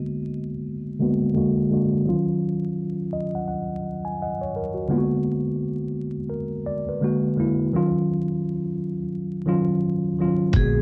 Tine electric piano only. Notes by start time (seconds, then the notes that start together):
Already playing: D3 G#3 A#3 B3 F#4
0.99 D3 G#3 A#3 B3 F#4
1.34 D3 G#3 A#3 F#4
1.70 D3 G#3 A#3 F#4
2.05 D#3 F#3 C#4 F4
3.13 D#5
3.35 F#5
3.48 F#5
4.05 G#5
4.22 D#5 F#5
4.41 C#5
4.56 A#4
4.74 F#4
4.89 D3 G#3 A#3 B3 F4
4.98 F#4
6.30 A#4
6.66 D5
6.89 B4
7.01 D3 G#3 A#3 F#4
7.36 D3 G#3 A#3 E4
7.74 D#3 F#3 C#4 F4
9.46 D#3 F#3 C#4 F4
10.19 D#3 F#3 C#4 F4
10.53 D3 G#3 B3 F#4